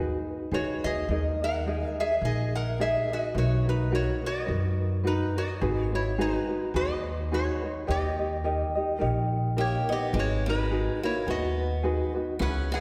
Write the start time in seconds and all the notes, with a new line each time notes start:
Already playing: D#2 D#4 F#4 G#4 A#4 B4 F#5
0.51 C#2 D#4 F#4 G#4 B4 C#5
0.84 D#2 D#4 F#4 G#4 B4 D#5
1.08 D#2 D#4 G#4 A#4 D#5
1.41 D#4 G#4 A#4 D#5 F#5
1.66 D#4 G#4 A#4 D#5
1.88 E5
2.00 D#4 G#4 D#5 E5
2.21 A#1 D#4 G#4 A#4 D#5
2.25 G#4 D#5
2.55 A#4 F#5
2.80 D#4 G#4 A#4 D#5 E5
3.11 D#4 F#4 G#4 D#5
3.35 B1 D#4 F#4 A#4 B4 C#5
3.39 F#4
3.66 D#4 F#4 A#4 B4
3.91 D#4 F#4 A#4 B4
3.95 F#4 C#5
4.22 D#4 F#4 A#4
4.26 F#4 D#5
4.46 F#2 D#4 F#4 A#4 B4
5.03 D#4 F#4 A#4 B4
5.07 D#4
5.36 D#4 F#4 A#4 D#5
5.61 G#1 D#4 F#4 G#4 B4
5.83 C#5
5.92 D#4 E4 F#4 B4 C#5
6.18 D#4 F#4 G#4 B4
6.48 D#4 F#4 B4
6.74 D#2 D#4 F#4 G#4 B4 D#5
7.31 D#4 F#4 G#4 B4 C#5
7.62 D#4 F#4 B4
7.87 D#2 D#4 G4 A#4 D#5
7.91 G4
8.19 D#4 G4 D#5
8.44 D#4 G4 A#4 D#5
8.75 D#4 G4 D#5
8.99 A#1 D#4 G4 A#4 D#5
9.04 C#5
9.57 A#3 D#4 G4 A#4 C#5 D#5
9.89 B3 D#4 G4 D#5
10.13 G#1 G#3 D#4 F#4 G#4 B4
10.19 F#4 C#5
10.46 G#3 D#4 F#4 B4
10.71 D#4 F#4 G#4 B4
11.02 A#3 D#4 E4 F#4 B4 C#5
11.26 D#2 B3 D#4 F#4 G#4 B4
11.31 D#5
11.83 D#4 F#4 G#4 B4
12.14 D#4 F#4 B4
12.39 C#2 C#4 E4 G#4 B4 F#5
12.72 C#4 E4 G#4 B4 E5